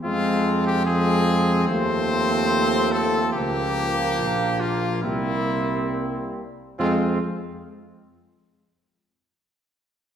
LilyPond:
<<
  \new Staff \with { instrumentName = "Trumpet" } { \time 4/4 \key f \minor \tempo 4 = 70 f'8. g'16 aes'4 c''4. a'8 | g'4. f'8 e'4. r8 | f'8 r2. r8 | }
  \new Staff \with { instrumentName = "Flugelhorn" } { \time 4/4 \key f \minor c'4 c'4 c'2 | bes2 c'4. r8 | c'8 r2. r8 | }
  \new Staff \with { instrumentName = "French horn" } { \clef bass \time 4/4 \key f \minor aes4 aes4 a2 | bes2 bes4. r8 | aes8 r2. r8 | }
  \new Staff \with { instrumentName = "Trombone" } { \clef bass \time 4/4 \key f \minor f4 f4 f2 | f2 g4. r8 | f8 r2. r8 | }
  \new Staff \with { instrumentName = "Tuba" } { \clef bass \time 4/4 \key f \minor f,2 ees,2 | des,4 bes,,4 c,4. r8 | f,8 r2. r8 | }
>>